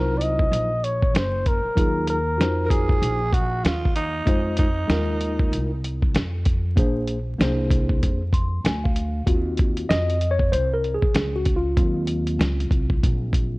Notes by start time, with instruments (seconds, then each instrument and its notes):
Already playing: upright bass C2, tine electric piano F#3 D#4 F4 C5, flugelhorn A#4
0.17 flugelhorn D5, closed hi-hat
0.22 flugelhorn D#5
0.39 kick
0.52 upright bass A#1, closed hi-hat
0.84 flugelhorn C#5, closed hi-hat
1.03 kick
1.14 upright bass F#1, flugelhorn C5, snare, closed hi-hat
1.46 flugelhorn A#4, kick, closed hi-hat
1.65 muted upright bass stroke
1.75 upright bass D#2, tine electric piano F#3 D#4 F4 G#4, kick, closed hi-hat
2.07 flugelhorn A#4, closed hi-hat
2.38 upright bass F2, tine electric piano D#4 F4 F#4 C5, snare, closed hi-hat
2.66 tenor saxophone A#4
2.70 tenor saxophone G#4, kick, closed hi-hat
2.89 kick
3.02 upright bass A#1, closed hi-hat
3.33 tenor saxophone F#4, kick, closed hi-hat
3.64 upright bass D#2, tenor saxophone F4, snare, closed hi-hat
3.85 kick
3.96 tenor saxophone D#4, closed hi-hat
4.26 upright bass F2, tine electric piano G#3 D#4 F4 C5, kick, closed hi-hat
4.57 tenor saxophone D#4, kick, closed hi-hat
4.88 upright bass D#2, tine electric piano G#3 D#4 F4 A#4, snare, closed hi-hat
5.21 closed hi-hat
5.39 kick
5.52 upright bass C2, closed hi-hat
5.84 closed hi-hat
6.02 kick
6.14 upright bass F2, snare, closed hi-hat
6.45 kick, closed hi-hat
6.76 upright bass A#1, tine electric piano A#3 D4 G#4 C5, kick, closed hi-hat
7.07 closed hi-hat
7.38 upright bass C2, tine electric piano A#3 D4 G#4 C5, snare, closed hi-hat
7.70 kick, closed hi-hat
7.89 kick
8.03 upright bass F2, kick, closed hi-hat
8.33 tine electric piano C6, kick, closed hi-hat
8.64 upright bass D2, tine electric piano G#5, snare, closed hi-hat
8.84 tine electric piano F5, kick
8.96 closed hi-hat
9.26 upright bass D#2, tine electric piano C4 F4 F#4, kick, closed hi-hat
9.57 kick, closed hi-hat
9.77 closed hi-hat
9.89 upright bass F2, tine electric piano D#5, snare, closed hi-hat
10.10 closed hi-hat
10.21 closed hi-hat
10.31 tine electric piano C#5
10.39 kick
10.52 upright bass C2, tine electric piano C5, closed hi-hat
10.74 tine electric piano A#4
10.84 closed hi-hat
10.94 tine electric piano G#4
11.02 muted upright bass stroke, kick
11.15 upright bass C#2, snare, closed hi-hat
11.36 tine electric piano F#4
11.46 kick, closed hi-hat
11.56 tine electric piano F4
11.77 upright bass D#2, tine electric piano F#3 C4 F4, kick, closed hi-hat
12.07 closed hi-hat
12.27 closed hi-hat
12.39 upright bass C#2, snare, closed hi-hat
12.60 closed hi-hat
12.71 upright bass C2, kick, closed hi-hat
12.90 kick
13.03 upright bass A#1, kick, closed hi-hat
13.33 kick, closed hi-hat